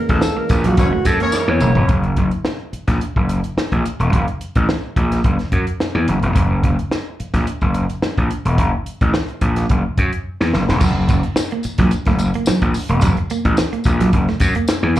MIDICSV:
0, 0, Header, 1, 9, 480
1, 0, Start_track
1, 0, Tempo, 556070
1, 1636, Time_signature, 4, 2, 24, 8
1, 12947, End_track
2, 0, Start_track
2, 0, Title_t, "Alto saxophone"
2, 0, Program_c, 0, 65
2, 0, Note_on_c, 0, 70, 88
2, 88, Note_on_c, 0, 69, 94
2, 101, Note_off_c, 0, 70, 0
2, 328, Note_on_c, 0, 70, 82
2, 341, Note_off_c, 0, 69, 0
2, 563, Note_on_c, 0, 66, 94
2, 576, Note_off_c, 0, 70, 0
2, 924, Note_on_c, 0, 69, 97
2, 937, Note_off_c, 0, 66, 0
2, 1049, Note_on_c, 0, 70, 95
2, 1062, Note_off_c, 0, 69, 0
2, 1294, Note_on_c, 0, 73, 115
2, 1307, Note_off_c, 0, 70, 0
2, 1641, Note_off_c, 0, 73, 0
2, 12947, End_track
3, 0, Start_track
3, 0, Title_t, "Horn section"
3, 0, Program_c, 1, 61
3, 679, Note_on_c, 1, 70, 88
3, 681, Note_on_c, 1, 68, 80
3, 684, Note_on_c, 1, 61, 81
3, 684, Note_on_c, 1, 73, 88
3, 759, Note_off_c, 1, 70, 0
3, 760, Note_off_c, 1, 68, 0
3, 763, Note_off_c, 1, 61, 0
3, 763, Note_off_c, 1, 73, 0
3, 1047, Note_on_c, 1, 68, 105
3, 1047, Note_on_c, 1, 70, 94
3, 1054, Note_on_c, 1, 61, 102
3, 1054, Note_on_c, 1, 73, 111
3, 1249, Note_off_c, 1, 68, 0
3, 1249, Note_off_c, 1, 70, 0
3, 1253, Note_off_c, 1, 61, 0
3, 1253, Note_off_c, 1, 73, 0
3, 12947, End_track
4, 0, Start_track
4, 0, Title_t, "Clean electric guitar"
4, 0, Program_c, 2, 27
4, 316, Note_on_c, 2, 58, 72
4, 393, Note_off_c, 2, 58, 0
4, 563, Note_on_c, 2, 54, 87
4, 638, Note_off_c, 2, 54, 0
4, 800, Note_on_c, 2, 57, 78
4, 876, Note_off_c, 2, 57, 0
4, 1043, Note_on_c, 2, 58, 76
4, 1117, Note_off_c, 2, 58, 0
4, 1404, Note_on_c, 2, 58, 73
4, 1485, Note_off_c, 2, 58, 0
4, 9331, Note_on_c, 2, 54, 98
4, 9414, Note_off_c, 2, 54, 0
4, 9578, Note_on_c, 2, 58, 72
4, 9659, Note_off_c, 2, 58, 0
4, 9946, Note_on_c, 2, 58, 77
4, 10016, Note_off_c, 2, 58, 0
4, 10184, Note_on_c, 2, 54, 93
4, 10255, Note_off_c, 2, 54, 0
4, 10424, Note_on_c, 2, 57, 72
4, 10495, Note_off_c, 2, 57, 0
4, 10664, Note_on_c, 2, 58, 76
4, 10735, Note_off_c, 2, 58, 0
4, 10773, Note_on_c, 2, 54, 69
4, 10854, Note_off_c, 2, 54, 0
4, 11140, Note_on_c, 2, 58, 76
4, 11212, Note_off_c, 2, 58, 0
4, 11252, Note_on_c, 2, 54, 95
4, 11333, Note_off_c, 2, 54, 0
4, 11490, Note_on_c, 2, 58, 81
4, 11571, Note_off_c, 2, 58, 0
4, 11850, Note_on_c, 2, 58, 74
4, 11924, Note_off_c, 2, 58, 0
4, 12092, Note_on_c, 2, 54, 92
4, 12165, Note_off_c, 2, 54, 0
4, 12333, Note_on_c, 2, 57, 74
4, 12405, Note_off_c, 2, 57, 0
4, 12568, Note_on_c, 2, 58, 88
4, 12641, Note_off_c, 2, 58, 0
4, 12920, Note_on_c, 2, 58, 76
4, 12947, Note_off_c, 2, 58, 0
4, 12947, End_track
5, 0, Start_track
5, 0, Title_t, "Tonewheel organ"
5, 0, Program_c, 3, 16
5, 0, Note_on_c, 3, 52, 67
5, 0, Note_on_c, 3, 56, 55
5, 0, Note_on_c, 3, 58, 61
5, 0, Note_on_c, 3, 61, 75
5, 1605, Note_off_c, 3, 58, 0
5, 1606, Note_off_c, 3, 52, 0
5, 1606, Note_off_c, 3, 56, 0
5, 1606, Note_off_c, 3, 61, 0
5, 12947, End_track
6, 0, Start_track
6, 0, Title_t, "Slap bass"
6, 0, Program_c, 4, 36
6, 80, Note_on_c, 4, 33, 104
6, 177, Note_off_c, 4, 33, 0
6, 431, Note_on_c, 4, 34, 80
6, 635, Note_off_c, 4, 34, 0
6, 672, Note_on_c, 4, 30, 93
6, 781, Note_off_c, 4, 30, 0
6, 910, Note_on_c, 4, 42, 102
6, 1019, Note_off_c, 4, 42, 0
6, 1275, Note_on_c, 4, 40, 88
6, 1373, Note_off_c, 4, 40, 0
6, 1389, Note_on_c, 4, 30, 93
6, 1499, Note_off_c, 4, 30, 0
6, 1516, Note_on_c, 4, 28, 93
6, 1614, Note_off_c, 4, 28, 0
6, 1635, Note_on_c, 4, 30, 93
6, 1837, Note_off_c, 4, 30, 0
6, 1874, Note_on_c, 4, 30, 74
6, 1982, Note_off_c, 4, 30, 0
6, 2481, Note_on_c, 4, 34, 87
6, 2577, Note_off_c, 4, 34, 0
6, 2729, Note_on_c, 4, 30, 83
6, 2930, Note_off_c, 4, 30, 0
6, 3211, Note_on_c, 4, 34, 72
6, 3304, Note_off_c, 4, 34, 0
6, 3449, Note_on_c, 4, 28, 79
6, 3543, Note_off_c, 4, 28, 0
6, 3564, Note_on_c, 4, 30, 90
6, 3669, Note_off_c, 4, 30, 0
6, 3936, Note_on_c, 4, 33, 93
6, 4028, Note_off_c, 4, 33, 0
6, 4286, Note_on_c, 4, 34, 81
6, 4486, Note_off_c, 4, 34, 0
6, 4528, Note_on_c, 4, 30, 91
6, 4632, Note_off_c, 4, 30, 0
6, 4765, Note_on_c, 4, 42, 77
6, 4871, Note_off_c, 4, 42, 0
6, 5133, Note_on_c, 4, 40, 83
6, 5227, Note_off_c, 4, 40, 0
6, 5251, Note_on_c, 4, 30, 95
6, 5355, Note_off_c, 4, 30, 0
6, 5374, Note_on_c, 4, 28, 83
6, 5468, Note_off_c, 4, 28, 0
6, 5489, Note_on_c, 4, 30, 105
6, 5689, Note_off_c, 4, 30, 0
6, 5729, Note_on_c, 4, 30, 89
6, 5834, Note_off_c, 4, 30, 0
6, 6332, Note_on_c, 4, 34, 87
6, 6427, Note_off_c, 4, 34, 0
6, 6574, Note_on_c, 4, 30, 76
6, 6776, Note_off_c, 4, 30, 0
6, 7059, Note_on_c, 4, 34, 73
6, 7152, Note_off_c, 4, 34, 0
6, 7296, Note_on_c, 4, 28, 81
6, 7410, Note_off_c, 4, 28, 0
6, 7410, Note_on_c, 4, 30, 99
6, 7516, Note_off_c, 4, 30, 0
6, 7782, Note_on_c, 4, 33, 90
6, 7874, Note_off_c, 4, 33, 0
6, 8125, Note_on_c, 4, 34, 74
6, 8329, Note_off_c, 4, 34, 0
6, 8374, Note_on_c, 4, 30, 91
6, 8479, Note_off_c, 4, 30, 0
6, 8613, Note_on_c, 4, 42, 85
6, 8718, Note_off_c, 4, 42, 0
6, 8982, Note_on_c, 4, 40, 81
6, 9074, Note_off_c, 4, 40, 0
6, 9096, Note_on_c, 4, 30, 89
6, 9200, Note_off_c, 4, 30, 0
6, 9225, Note_on_c, 4, 28, 76
6, 9316, Note_off_c, 4, 28, 0
6, 9331, Note_on_c, 4, 30, 99
6, 9531, Note_off_c, 4, 30, 0
6, 9572, Note_on_c, 4, 30, 89
6, 9677, Note_off_c, 4, 30, 0
6, 10175, Note_on_c, 4, 34, 93
6, 10269, Note_off_c, 4, 34, 0
6, 10414, Note_on_c, 4, 30, 91
6, 10615, Note_off_c, 4, 30, 0
6, 10893, Note_on_c, 4, 34, 93
6, 10987, Note_off_c, 4, 34, 0
6, 11128, Note_on_c, 4, 28, 92
6, 11224, Note_off_c, 4, 28, 0
6, 11240, Note_on_c, 4, 30, 109
6, 11348, Note_off_c, 4, 30, 0
6, 11610, Note_on_c, 4, 33, 105
6, 11704, Note_off_c, 4, 33, 0
6, 11960, Note_on_c, 4, 34, 88
6, 12162, Note_off_c, 4, 34, 0
6, 12198, Note_on_c, 4, 30, 91
6, 12306, Note_off_c, 4, 30, 0
6, 12433, Note_on_c, 4, 42, 91
6, 12543, Note_off_c, 4, 42, 0
6, 12799, Note_on_c, 4, 40, 85
6, 12896, Note_off_c, 4, 40, 0
6, 12917, Note_on_c, 4, 30, 99
6, 12947, Note_off_c, 4, 30, 0
6, 12947, End_track
7, 0, Start_track
7, 0, Title_t, "Muted clean electric guitar strokes"
7, 440, Note_on_c, 9, 29, 44
7, 527, Note_off_c, 9, 29, 0
7, 924, Note_on_c, 9, 29, 43
7, 1010, Note_off_c, 9, 29, 0
7, 9470, Note_on_c, 9, 29, 44
7, 9556, Note_off_c, 9, 29, 0
7, 10057, Note_on_c, 9, 29, 46
7, 10144, Note_off_c, 9, 29, 0
7, 10541, Note_on_c, 9, 29, 47
7, 10628, Note_off_c, 9, 29, 0
7, 10900, Note_on_c, 9, 29, 47
7, 10986, Note_off_c, 9, 29, 0
7, 11381, Note_on_c, 9, 29, 50
7, 11467, Note_off_c, 9, 29, 0
7, 11967, Note_on_c, 9, 29, 45
7, 12053, Note_off_c, 9, 29, 0
7, 12448, Note_on_c, 9, 29, 51
7, 12534, Note_off_c, 9, 29, 0
7, 12947, End_track
8, 0, Start_track
8, 0, Title_t, "Muted slap bass strokes"
8, 2355, Note_on_c, 9, 29, 39
8, 2441, Note_off_c, 9, 29, 0
8, 2597, Note_on_c, 9, 29, 40
8, 2683, Note_off_c, 9, 29, 0
8, 3082, Note_on_c, 9, 29, 43
8, 3168, Note_off_c, 9, 29, 0
8, 6216, Note_on_c, 9, 29, 45
8, 6302, Note_off_c, 9, 29, 0
8, 6446, Note_on_c, 9, 29, 41
8, 6533, Note_off_c, 9, 29, 0
8, 6924, Note_on_c, 9, 29, 45
8, 7011, Note_off_c, 9, 29, 0
8, 10054, Note_on_c, 9, 29, 46
8, 10140, Note_off_c, 9, 29, 0
8, 10291, Note_on_c, 9, 29, 50
8, 10378, Note_off_c, 9, 29, 0
8, 10777, Note_on_c, 9, 29, 51
8, 10863, Note_off_c, 9, 29, 0
8, 12947, End_track
9, 0, Start_track
9, 0, Title_t, "Drums"
9, 76, Note_on_c, 9, 42, 41
9, 80, Note_on_c, 9, 36, 92
9, 162, Note_off_c, 9, 42, 0
9, 166, Note_off_c, 9, 36, 0
9, 185, Note_on_c, 9, 38, 112
9, 191, Note_on_c, 9, 54, 73
9, 271, Note_off_c, 9, 38, 0
9, 277, Note_off_c, 9, 54, 0
9, 424, Note_on_c, 9, 54, 46
9, 428, Note_on_c, 9, 42, 67
9, 431, Note_on_c, 9, 36, 105
9, 510, Note_off_c, 9, 54, 0
9, 515, Note_off_c, 9, 42, 0
9, 517, Note_off_c, 9, 36, 0
9, 553, Note_on_c, 9, 42, 64
9, 556, Note_on_c, 9, 38, 40
9, 639, Note_off_c, 9, 42, 0
9, 643, Note_off_c, 9, 38, 0
9, 667, Note_on_c, 9, 42, 77
9, 671, Note_on_c, 9, 36, 98
9, 671, Note_on_c, 9, 54, 34
9, 753, Note_off_c, 9, 42, 0
9, 757, Note_off_c, 9, 54, 0
9, 758, Note_off_c, 9, 36, 0
9, 906, Note_on_c, 9, 42, 66
9, 909, Note_on_c, 9, 54, 65
9, 910, Note_on_c, 9, 36, 86
9, 992, Note_off_c, 9, 42, 0
9, 996, Note_off_c, 9, 54, 0
9, 997, Note_off_c, 9, 36, 0
9, 1036, Note_on_c, 9, 42, 49
9, 1123, Note_off_c, 9, 42, 0
9, 1140, Note_on_c, 9, 54, 99
9, 1149, Note_on_c, 9, 38, 57
9, 1226, Note_off_c, 9, 54, 0
9, 1235, Note_off_c, 9, 38, 0
9, 1385, Note_on_c, 9, 54, 66
9, 1387, Note_on_c, 9, 45, 96
9, 1471, Note_off_c, 9, 54, 0
9, 1473, Note_off_c, 9, 45, 0
9, 1513, Note_on_c, 9, 43, 97
9, 1599, Note_off_c, 9, 43, 0
9, 1629, Note_on_c, 9, 42, 86
9, 1633, Note_on_c, 9, 36, 118
9, 1716, Note_off_c, 9, 42, 0
9, 1720, Note_off_c, 9, 36, 0
9, 1757, Note_on_c, 9, 42, 32
9, 1843, Note_off_c, 9, 42, 0
9, 1869, Note_on_c, 9, 42, 57
9, 1874, Note_on_c, 9, 36, 87
9, 1955, Note_off_c, 9, 42, 0
9, 1961, Note_off_c, 9, 36, 0
9, 1997, Note_on_c, 9, 42, 39
9, 2083, Note_off_c, 9, 42, 0
9, 2112, Note_on_c, 9, 38, 100
9, 2198, Note_off_c, 9, 38, 0
9, 2358, Note_on_c, 9, 42, 57
9, 2444, Note_off_c, 9, 42, 0
9, 2484, Note_on_c, 9, 36, 81
9, 2484, Note_on_c, 9, 42, 63
9, 2487, Note_on_c, 9, 38, 38
9, 2570, Note_off_c, 9, 36, 0
9, 2570, Note_off_c, 9, 42, 0
9, 2573, Note_off_c, 9, 38, 0
9, 2600, Note_on_c, 9, 42, 73
9, 2686, Note_off_c, 9, 42, 0
9, 2729, Note_on_c, 9, 36, 70
9, 2815, Note_off_c, 9, 36, 0
9, 2841, Note_on_c, 9, 42, 63
9, 2928, Note_off_c, 9, 42, 0
9, 2968, Note_on_c, 9, 42, 47
9, 3055, Note_off_c, 9, 42, 0
9, 3087, Note_on_c, 9, 38, 98
9, 3173, Note_off_c, 9, 38, 0
9, 3211, Note_on_c, 9, 36, 69
9, 3214, Note_on_c, 9, 42, 30
9, 3298, Note_off_c, 9, 36, 0
9, 3301, Note_off_c, 9, 42, 0
9, 3328, Note_on_c, 9, 42, 80
9, 3414, Note_off_c, 9, 42, 0
9, 3456, Note_on_c, 9, 42, 49
9, 3543, Note_off_c, 9, 42, 0
9, 3564, Note_on_c, 9, 36, 103
9, 3565, Note_on_c, 9, 42, 86
9, 3651, Note_off_c, 9, 36, 0
9, 3651, Note_off_c, 9, 42, 0
9, 3692, Note_on_c, 9, 42, 34
9, 3779, Note_off_c, 9, 42, 0
9, 3806, Note_on_c, 9, 42, 64
9, 3893, Note_off_c, 9, 42, 0
9, 3931, Note_on_c, 9, 42, 46
9, 3934, Note_on_c, 9, 36, 74
9, 4017, Note_off_c, 9, 42, 0
9, 4020, Note_off_c, 9, 36, 0
9, 4047, Note_on_c, 9, 38, 106
9, 4133, Note_off_c, 9, 38, 0
9, 4284, Note_on_c, 9, 36, 89
9, 4286, Note_on_c, 9, 42, 59
9, 4371, Note_off_c, 9, 36, 0
9, 4372, Note_off_c, 9, 42, 0
9, 4417, Note_on_c, 9, 42, 60
9, 4421, Note_on_c, 9, 38, 35
9, 4504, Note_off_c, 9, 42, 0
9, 4507, Note_off_c, 9, 38, 0
9, 4524, Note_on_c, 9, 42, 72
9, 4527, Note_on_c, 9, 36, 88
9, 4611, Note_off_c, 9, 42, 0
9, 4613, Note_off_c, 9, 36, 0
9, 4653, Note_on_c, 9, 42, 28
9, 4656, Note_on_c, 9, 38, 30
9, 4739, Note_off_c, 9, 42, 0
9, 4742, Note_off_c, 9, 38, 0
9, 4764, Note_on_c, 9, 42, 59
9, 4765, Note_on_c, 9, 36, 78
9, 4850, Note_off_c, 9, 42, 0
9, 4851, Note_off_c, 9, 36, 0
9, 4894, Note_on_c, 9, 42, 44
9, 4980, Note_off_c, 9, 42, 0
9, 5009, Note_on_c, 9, 38, 94
9, 5096, Note_off_c, 9, 38, 0
9, 5246, Note_on_c, 9, 42, 75
9, 5333, Note_off_c, 9, 42, 0
9, 5374, Note_on_c, 9, 42, 46
9, 5461, Note_off_c, 9, 42, 0
9, 5486, Note_on_c, 9, 36, 101
9, 5487, Note_on_c, 9, 42, 96
9, 5573, Note_off_c, 9, 36, 0
9, 5573, Note_off_c, 9, 42, 0
9, 5727, Note_on_c, 9, 36, 96
9, 5729, Note_on_c, 9, 42, 62
9, 5814, Note_off_c, 9, 36, 0
9, 5816, Note_off_c, 9, 42, 0
9, 5861, Note_on_c, 9, 42, 39
9, 5948, Note_off_c, 9, 42, 0
9, 5969, Note_on_c, 9, 38, 95
9, 6055, Note_off_c, 9, 38, 0
9, 6213, Note_on_c, 9, 42, 64
9, 6300, Note_off_c, 9, 42, 0
9, 6334, Note_on_c, 9, 36, 79
9, 6336, Note_on_c, 9, 42, 52
9, 6339, Note_on_c, 9, 38, 32
9, 6420, Note_off_c, 9, 36, 0
9, 6422, Note_off_c, 9, 42, 0
9, 6426, Note_off_c, 9, 38, 0
9, 6449, Note_on_c, 9, 42, 67
9, 6535, Note_off_c, 9, 42, 0
9, 6571, Note_on_c, 9, 42, 30
9, 6576, Note_on_c, 9, 36, 74
9, 6657, Note_off_c, 9, 42, 0
9, 6662, Note_off_c, 9, 36, 0
9, 6685, Note_on_c, 9, 42, 59
9, 6771, Note_off_c, 9, 42, 0
9, 6815, Note_on_c, 9, 42, 46
9, 6902, Note_off_c, 9, 42, 0
9, 6927, Note_on_c, 9, 38, 101
9, 7013, Note_off_c, 9, 38, 0
9, 7057, Note_on_c, 9, 36, 76
9, 7058, Note_on_c, 9, 42, 29
9, 7143, Note_off_c, 9, 36, 0
9, 7145, Note_off_c, 9, 42, 0
9, 7169, Note_on_c, 9, 42, 71
9, 7256, Note_off_c, 9, 42, 0
9, 7298, Note_on_c, 9, 42, 50
9, 7385, Note_off_c, 9, 42, 0
9, 7407, Note_on_c, 9, 42, 85
9, 7408, Note_on_c, 9, 36, 109
9, 7494, Note_off_c, 9, 36, 0
9, 7494, Note_off_c, 9, 42, 0
9, 7650, Note_on_c, 9, 42, 56
9, 7737, Note_off_c, 9, 42, 0
9, 7778, Note_on_c, 9, 42, 48
9, 7779, Note_on_c, 9, 36, 79
9, 7864, Note_off_c, 9, 42, 0
9, 7865, Note_off_c, 9, 36, 0
9, 7887, Note_on_c, 9, 38, 105
9, 7973, Note_off_c, 9, 38, 0
9, 8014, Note_on_c, 9, 42, 30
9, 8100, Note_off_c, 9, 42, 0
9, 8125, Note_on_c, 9, 42, 64
9, 8127, Note_on_c, 9, 36, 90
9, 8211, Note_off_c, 9, 42, 0
9, 8214, Note_off_c, 9, 36, 0
9, 8255, Note_on_c, 9, 42, 60
9, 8258, Note_on_c, 9, 38, 35
9, 8341, Note_off_c, 9, 42, 0
9, 8344, Note_off_c, 9, 38, 0
9, 8369, Note_on_c, 9, 42, 71
9, 8372, Note_on_c, 9, 36, 82
9, 8455, Note_off_c, 9, 42, 0
9, 8459, Note_off_c, 9, 36, 0
9, 8611, Note_on_c, 9, 36, 84
9, 8611, Note_on_c, 9, 42, 64
9, 8697, Note_off_c, 9, 36, 0
9, 8697, Note_off_c, 9, 42, 0
9, 8740, Note_on_c, 9, 42, 46
9, 8827, Note_off_c, 9, 42, 0
9, 8982, Note_on_c, 9, 38, 51
9, 9068, Note_off_c, 9, 38, 0
9, 9094, Note_on_c, 9, 38, 78
9, 9181, Note_off_c, 9, 38, 0
9, 9224, Note_on_c, 9, 38, 78
9, 9311, Note_off_c, 9, 38, 0
9, 9327, Note_on_c, 9, 54, 61
9, 9328, Note_on_c, 9, 49, 95
9, 9333, Note_on_c, 9, 36, 118
9, 9414, Note_off_c, 9, 49, 0
9, 9414, Note_off_c, 9, 54, 0
9, 9419, Note_off_c, 9, 36, 0
9, 9569, Note_on_c, 9, 42, 70
9, 9572, Note_on_c, 9, 36, 91
9, 9573, Note_on_c, 9, 54, 46
9, 9656, Note_off_c, 9, 42, 0
9, 9658, Note_off_c, 9, 36, 0
9, 9659, Note_off_c, 9, 54, 0
9, 9695, Note_on_c, 9, 42, 44
9, 9782, Note_off_c, 9, 42, 0
9, 9805, Note_on_c, 9, 38, 114
9, 9812, Note_on_c, 9, 54, 83
9, 9891, Note_off_c, 9, 38, 0
9, 9899, Note_off_c, 9, 54, 0
9, 9934, Note_on_c, 9, 42, 35
9, 10021, Note_off_c, 9, 42, 0
9, 10038, Note_on_c, 9, 54, 49
9, 10047, Note_on_c, 9, 42, 65
9, 10125, Note_off_c, 9, 54, 0
9, 10133, Note_off_c, 9, 42, 0
9, 10168, Note_on_c, 9, 42, 66
9, 10171, Note_on_c, 9, 38, 42
9, 10173, Note_on_c, 9, 36, 93
9, 10254, Note_off_c, 9, 42, 0
9, 10257, Note_off_c, 9, 38, 0
9, 10260, Note_off_c, 9, 36, 0
9, 10281, Note_on_c, 9, 42, 72
9, 10290, Note_on_c, 9, 54, 37
9, 10368, Note_off_c, 9, 42, 0
9, 10377, Note_off_c, 9, 54, 0
9, 10405, Note_on_c, 9, 42, 34
9, 10408, Note_on_c, 9, 38, 34
9, 10415, Note_on_c, 9, 36, 86
9, 10491, Note_off_c, 9, 42, 0
9, 10494, Note_off_c, 9, 38, 0
9, 10501, Note_off_c, 9, 36, 0
9, 10520, Note_on_c, 9, 42, 71
9, 10525, Note_on_c, 9, 54, 70
9, 10606, Note_off_c, 9, 42, 0
9, 10612, Note_off_c, 9, 54, 0
9, 10652, Note_on_c, 9, 42, 55
9, 10738, Note_off_c, 9, 42, 0
9, 10754, Note_on_c, 9, 54, 95
9, 10767, Note_on_c, 9, 38, 114
9, 10840, Note_off_c, 9, 54, 0
9, 10853, Note_off_c, 9, 38, 0
9, 10890, Note_on_c, 9, 42, 37
9, 10893, Note_on_c, 9, 36, 89
9, 10976, Note_off_c, 9, 42, 0
9, 10979, Note_off_c, 9, 36, 0
9, 10999, Note_on_c, 9, 54, 62
9, 11004, Note_on_c, 9, 46, 91
9, 11085, Note_off_c, 9, 54, 0
9, 11090, Note_off_c, 9, 46, 0
9, 11130, Note_on_c, 9, 42, 49
9, 11216, Note_off_c, 9, 42, 0
9, 11232, Note_on_c, 9, 54, 61
9, 11239, Note_on_c, 9, 42, 108
9, 11243, Note_on_c, 9, 36, 121
9, 11318, Note_off_c, 9, 54, 0
9, 11325, Note_off_c, 9, 42, 0
9, 11329, Note_off_c, 9, 36, 0
9, 11368, Note_on_c, 9, 42, 35
9, 11454, Note_off_c, 9, 42, 0
9, 11479, Note_on_c, 9, 54, 42
9, 11483, Note_on_c, 9, 42, 74
9, 11566, Note_off_c, 9, 54, 0
9, 11569, Note_off_c, 9, 42, 0
9, 11610, Note_on_c, 9, 42, 47
9, 11611, Note_on_c, 9, 36, 83
9, 11696, Note_off_c, 9, 42, 0
9, 11697, Note_off_c, 9, 36, 0
9, 11714, Note_on_c, 9, 54, 76
9, 11723, Note_on_c, 9, 38, 109
9, 11800, Note_off_c, 9, 54, 0
9, 11809, Note_off_c, 9, 38, 0
9, 11851, Note_on_c, 9, 42, 37
9, 11937, Note_off_c, 9, 42, 0
9, 11945, Note_on_c, 9, 54, 53
9, 11959, Note_on_c, 9, 36, 95
9, 11964, Note_on_c, 9, 42, 66
9, 12032, Note_off_c, 9, 54, 0
9, 12046, Note_off_c, 9, 36, 0
9, 12050, Note_off_c, 9, 42, 0
9, 12089, Note_on_c, 9, 42, 68
9, 12092, Note_on_c, 9, 38, 38
9, 12175, Note_off_c, 9, 42, 0
9, 12178, Note_off_c, 9, 38, 0
9, 12196, Note_on_c, 9, 42, 75
9, 12199, Note_on_c, 9, 36, 92
9, 12282, Note_off_c, 9, 42, 0
9, 12285, Note_off_c, 9, 36, 0
9, 12324, Note_on_c, 9, 38, 33
9, 12411, Note_off_c, 9, 38, 0
9, 12428, Note_on_c, 9, 42, 67
9, 12434, Note_on_c, 9, 36, 98
9, 12439, Note_on_c, 9, 54, 70
9, 12514, Note_off_c, 9, 42, 0
9, 12520, Note_off_c, 9, 36, 0
9, 12525, Note_off_c, 9, 54, 0
9, 12558, Note_on_c, 9, 42, 56
9, 12644, Note_off_c, 9, 42, 0
9, 12669, Note_on_c, 9, 54, 109
9, 12677, Note_on_c, 9, 38, 124
9, 12755, Note_off_c, 9, 54, 0
9, 12763, Note_off_c, 9, 38, 0
9, 12911, Note_on_c, 9, 46, 86
9, 12918, Note_on_c, 9, 54, 61
9, 12947, Note_off_c, 9, 46, 0
9, 12947, Note_off_c, 9, 54, 0
9, 12947, End_track
0, 0, End_of_file